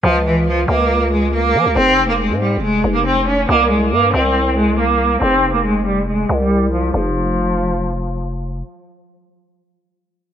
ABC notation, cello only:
X:1
M:4/4
L:1/16
Q:1/4=139
K:Fm
V:1 name="Cello" clef=bass
F,2 =E,2 F,2 B,4 A,2 B,4 | C3 B, A,2 G,2 A,3 B, C2 D2 | B,2 A,2 B,2 C4 A,2 B,4 | C3 B, A,2 G,2 A,3 G,3 F,2 |
F,12 z4 | z16 |]